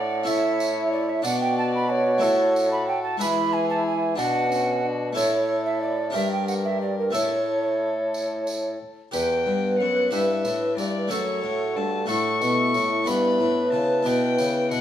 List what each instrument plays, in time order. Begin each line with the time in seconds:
Already playing: harpsichord A2 D4 E4 A4, bassoon A2, violin D5, recorder F#5
0.23 harpsichord C#4 E4 A4, tambourine
0.28 trombone E4, violin C#5, recorder E5
0.60 tambourine
0.92 recorder D5
1.09 recorder E5
1.22 harpsichord B2 D4 D5, bassoon B2, trombone F#4, violin D5, recorder F#5, tambourine
1.41 recorder G5
1.58 recorder A5
1.75 recorder B5
1.90 recorder C#5
2.18 harpsichord A2 A3 E4 A4
2.22 bassoon A2, violin A4, tambourine
2.56 tambourine
2.72 recorder B5
2.88 recorder G5
3.03 recorder A5
3.18 bassoon E3, harpsichord E3 G#3 E4 B4, trombone E4, violin G#4, recorder B5, tambourine
3.53 recorder G#5
3.70 recorder A5
3.87 recorder G#5
4.15 harpsichord B2 D4 D5, bassoon B2, trombone D4, violin F#4, recorder F#5, tambourine
4.50 trombone C#4, tambourine
4.83 trombone D4
5.13 bassoon A2, harpsichord A2 A3 E4 A4, trombone E4, violin A4, recorder C#5
5.17 tambourine
5.66 recorder E5
5.82 recorder D5
6.10 harpsichord D4 G4 A#4, recorder E5
6.14 harpsichord G2, bassoon G2, trombone G4, violin A#4, tambourine
6.32 recorder G5
6.48 recorder F#5, tambourine
6.65 recorder E5
6.82 recorder D5
6.99 recorder A#4
7.10 harpsichord A2 A3 E4 A4, trombone E4, violin A4, tambourine
7.15 bassoon A2, recorder C#5
8.14 tambourine
8.47 tambourine
9.11 harpsichord E2 G4 B4, bassoon E2, recorder B4, violin G5, tambourine
9.16 trombone B3
9.47 harpsichord G2, bassoon G2
9.79 bassoon F#2, harpsichord F#2, violin F#5
10.11 bassoon G2, harpsichord G2 G4 B4, trombone E4, violin E5, tambourine
10.45 harpsichord A2, bassoon A2, tambourine
10.77 harpsichord G2, bassoon G2, violin D5, tambourine
11.08 bassoon F#2, harpsichord F#2 A3 F#4 A4, trombone F#4, recorder A4, violin C#5, tambourine
11.44 bassoon A2, harpsichord A2
11.76 bassoon G2, harpsichord G2, violin A5
12.06 harpsichord A2 A3 F#4 A4, bassoon A2, trombone E4, recorder A4, violin C#6, tambourine
12.41 bassoon B2, harpsichord B2, tambourine
12.74 bassoon A2, harpsichord A2, tambourine
13.04 bassoon G2, harpsichord G2 B3 D5, recorder B4, violin B5, tambourine
13.40 harpsichord A2, bassoon A2
13.72 harpsichord C#3, bassoon C#3, violin A5
14.03 bassoon B2, harpsichord B2 B3 D5, violin G5, tambourine
14.38 bassoon C#3, harpsichord C#3, tambourine
14.71 bassoon B2, harpsichord B2, violin F#5, tambourine